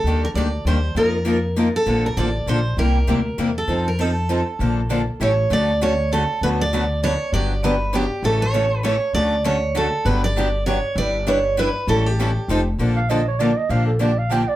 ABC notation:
X:1
M:3/4
L:1/8
Q:"Swing" 1/4=198
K:Bb
V:1 name="Clarinet"
z6 | z6 | z6 | z6 |
z6 | z6 | [K:D] z6 | z6 |
z6 | z6 | z6 | z6 |
z6 | z6 | [K:Bb] z f e _d =d e | f A d f g d |]
V:2 name="Steel-string acoustic guitar"
A B d2 c2 | B4- B A- | A B d2 c2 | B4- B A- |
A B A4- | A4 ^c2 | [K:D] d2 c2 A2 | B d3 c2 |
d2 B2 G2 | A c3 c2 | d2 c2 A2 | B d3 c2 |
d2 c2 B2 | A G4 z | [K:Bb] z6 | z6 |]
V:3 name="Steel-string acoustic guitar"
[E,G,B,DG] z [E,G,B,DG] z [E,G,B,DG] z | [F,B,EFB] z [F,B,EFB] z [F,B,EFB] z | [D,F,B,DA] z [D,F,B,DA] z [D,F,B,DA] z | [C,G,B,=EG] z [C,G,B,EG] z [C,G,B,EG] z |
[F,CEA] z [F,CEA] z [F,CEA] z | [D,F,B,DA] z [D,F,B,DA] z [=E,G,^C=EA] z | [K:D] [D,A,CFA] z [D,A,CFA] z [D,A,CFA] z | [D,F,A,DFB] z [D,F,A,DFB] z [D,F,A,DFB] z |
[D,F,B,DG] z [D,F,B,DG] z [D,F,B,DG] z | [E,A,CEA] z [E,A,CEA] z [E,A,CEA] z | [D,A,CFA] z [D,A,CFA] z [D,A,CFA] z | [D,F,B,DG] z [D,F,B,DG] z [D,F,B,DG] z |
[G,DEB] z [G,DEB] z [G,DEB] z | [E,G,CEA] z [E,G,CEA] z [=F,=C_EA] z | [K:Bb] [D,F,B,DA] z [D,F,B,DA] z [D,F,B,DA] z | [D,F,B,DG] z [D,F,B,DG] z [D,F,B,DG] z |]
V:4 name="Steel-string acoustic guitar"
[E,G,B,DG] z [E,G,B,DG] z [E,G,B,DG] z | [F,B,EFB] z [F,B,EFB] z [F,B,EFB] z | [D,F,B,DA] z [D,F,B,DA] z [D,F,B,DA] z | [C,G,B,=EG] z [C,G,B,EG] z [C,G,B,EG] z |
[F,CEA] z [F,CEA] z [F,CEA] z | [D,F,B,DA] z [D,F,B,DA] z [=E,G,^C=EA] z | [K:D] [D,F,A,CF] z [D,F,A,CF] z [D,F,A,CF] z | [D,F,B,FA] z [D,F,B,FA] z [D,F,B,FA] z |
[D,F,B,DG] z [D,F,B,DG] z [D,F,B,DG] z | [C,E,A,CA] z [C,E,A,CA] z [C,E,A,CA] z | [D,F,A,CF] z [D,F,A,CF] z [D,F,A,CF] z | [D,F,B,DG] z [D,F,B,DG] z [D,F,B,DG] z |
[G,DEB] z [G,DEB] z [G,DEB] z | [E,G,CEA] z [E,G,CEA] z [=F,=C_EA] z | [K:Bb] [D,F,B,DA] z [D,F,B,DA] z [D,F,B,DA] z | [D,F,B,DG] z [D,F,B,DG] z [D,F,B,DG] z |]
V:5 name="Upright bass" clef=bass
E,,2 D,,2 E,,2 | F,,6 | B,,,2 A,,,2 B,,,2 | C,,2 D,,2 =E,,2 |
F,,6 | B,,,4 A,,,2 | [K:D] D,,6 | D,,6 |
G,,,6 | A,,,6 | D,,6 | G,,,6 |
G,,,6 | A,,,4 =F,,,2 | [K:Bb] B,,,6 | B,,,6 |]